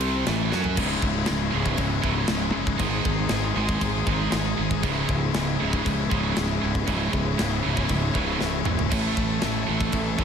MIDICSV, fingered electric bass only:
0, 0, Header, 1, 2, 480
1, 0, Start_track
1, 0, Key_signature, 4, "minor"
1, 0, Tempo, 509771
1, 727, Time_signature, 4, 2, 24, 8
1, 9644, End_track
2, 0, Start_track
2, 0, Title_t, "Fingered electric bass"
2, 0, Program_c, 0, 33
2, 0, Note_on_c, 0, 36, 91
2, 214, Note_off_c, 0, 36, 0
2, 270, Note_on_c, 0, 33, 89
2, 482, Note_off_c, 0, 33, 0
2, 501, Note_on_c, 0, 42, 99
2, 735, Note_on_c, 0, 25, 93
2, 749, Note_off_c, 0, 42, 0
2, 919, Note_off_c, 0, 25, 0
2, 962, Note_on_c, 0, 25, 96
2, 1151, Note_off_c, 0, 25, 0
2, 1225, Note_on_c, 0, 25, 94
2, 1405, Note_off_c, 0, 25, 0
2, 1454, Note_on_c, 0, 25, 95
2, 1638, Note_off_c, 0, 25, 0
2, 1680, Note_on_c, 0, 25, 93
2, 1870, Note_off_c, 0, 25, 0
2, 1919, Note_on_c, 0, 25, 92
2, 2109, Note_off_c, 0, 25, 0
2, 2164, Note_on_c, 0, 25, 87
2, 2352, Note_off_c, 0, 25, 0
2, 2401, Note_on_c, 0, 30, 90
2, 2590, Note_off_c, 0, 30, 0
2, 2634, Note_on_c, 0, 32, 99
2, 2825, Note_off_c, 0, 32, 0
2, 2875, Note_on_c, 0, 32, 87
2, 3066, Note_off_c, 0, 32, 0
2, 3121, Note_on_c, 0, 32, 102
2, 3309, Note_off_c, 0, 32, 0
2, 3355, Note_on_c, 0, 32, 91
2, 3546, Note_off_c, 0, 32, 0
2, 3593, Note_on_c, 0, 32, 97
2, 3784, Note_off_c, 0, 32, 0
2, 3838, Note_on_c, 0, 32, 95
2, 4027, Note_off_c, 0, 32, 0
2, 4078, Note_on_c, 0, 32, 94
2, 4267, Note_off_c, 0, 32, 0
2, 4322, Note_on_c, 0, 32, 99
2, 4556, Note_off_c, 0, 32, 0
2, 4556, Note_on_c, 0, 25, 100
2, 4746, Note_off_c, 0, 25, 0
2, 4792, Note_on_c, 0, 25, 91
2, 4983, Note_off_c, 0, 25, 0
2, 5049, Note_on_c, 0, 25, 97
2, 5233, Note_off_c, 0, 25, 0
2, 5292, Note_on_c, 0, 25, 92
2, 5475, Note_off_c, 0, 25, 0
2, 5525, Note_on_c, 0, 25, 93
2, 5711, Note_off_c, 0, 25, 0
2, 5765, Note_on_c, 0, 25, 95
2, 5951, Note_off_c, 0, 25, 0
2, 6010, Note_on_c, 0, 25, 87
2, 6194, Note_off_c, 0, 25, 0
2, 6245, Note_on_c, 0, 25, 99
2, 6431, Note_off_c, 0, 25, 0
2, 6476, Note_on_c, 0, 25, 104
2, 6666, Note_off_c, 0, 25, 0
2, 6718, Note_on_c, 0, 25, 94
2, 6907, Note_off_c, 0, 25, 0
2, 6971, Note_on_c, 0, 25, 94
2, 7155, Note_off_c, 0, 25, 0
2, 7209, Note_on_c, 0, 25, 85
2, 7394, Note_off_c, 0, 25, 0
2, 7435, Note_on_c, 0, 25, 97
2, 7625, Note_off_c, 0, 25, 0
2, 7677, Note_on_c, 0, 25, 95
2, 7867, Note_off_c, 0, 25, 0
2, 7924, Note_on_c, 0, 25, 91
2, 8111, Note_off_c, 0, 25, 0
2, 8162, Note_on_c, 0, 25, 89
2, 8350, Note_off_c, 0, 25, 0
2, 8400, Note_on_c, 0, 33, 101
2, 8589, Note_off_c, 0, 33, 0
2, 8639, Note_on_c, 0, 33, 99
2, 8828, Note_off_c, 0, 33, 0
2, 8886, Note_on_c, 0, 33, 93
2, 9073, Note_off_c, 0, 33, 0
2, 9121, Note_on_c, 0, 33, 92
2, 9310, Note_off_c, 0, 33, 0
2, 9357, Note_on_c, 0, 33, 96
2, 9548, Note_off_c, 0, 33, 0
2, 9593, Note_on_c, 0, 33, 86
2, 9644, Note_off_c, 0, 33, 0
2, 9644, End_track
0, 0, End_of_file